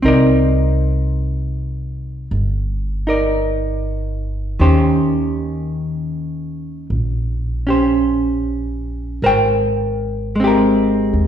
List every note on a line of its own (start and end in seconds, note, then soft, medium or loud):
0.02 2.27 C2 medium
0.02 4.59 C4 soft
0.02 3.06 D#4 soft
0.02 3.07 A#4 medium
0.08 3.09 D5 soft
2.31 4.55 G1 medium
3.07 4.59 D#4 soft
3.07 4.59 A#4 soft
3.07 4.60 D5 soft
4.60 6.86 D#2 medium
4.60 9.22 D#3 soft
4.60 7.65 C#4 soft
4.60 7.67 G4 soft
4.60 7.69 C5 soft
6.90 9.18 A#1 medium
7.67 9.21 C#4 soft
7.67 9.22 G4 soft
7.67 9.22 C5 soft
9.22 11.10 G#1 medium
9.22 10.40 A#4 soft
9.22 10.44 C5 medium
9.26 10.47 G5 medium
10.36 11.27 G#3 soft
10.40 11.27 C4 soft
10.44 11.27 G4 medium
10.44 11.27 A#4 soft
11.13 11.27 D#2 medium